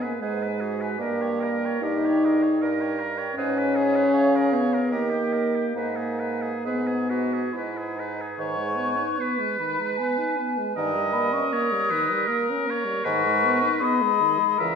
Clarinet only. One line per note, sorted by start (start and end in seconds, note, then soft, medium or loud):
0.00 0.16 G#4 medium
0.21 0.63 B4 medium
0.61 1.00 F#4 medium
0.98 1.42 G4 medium
1.40 1.85 A#4 medium
1.83 2.25 G4 medium
2.24 2.64 G#4 medium
2.62 3.37 A#4 medium
3.37 3.79 B4 medium
3.77 4.94 G#4 medium
4.93 5.75 G4 medium
5.75 6.54 D#4 soft
6.64 7.07 G#4 medium
7.10 7.55 F#4 medium
7.53 7.97 E4 medium
7.96 8.37 D#4 soft
8.38 10.78 B4 medium
10.76 13.82 A#4 medium
13.80 14.60 G#4 medium
14.58 14.75 A#4 medium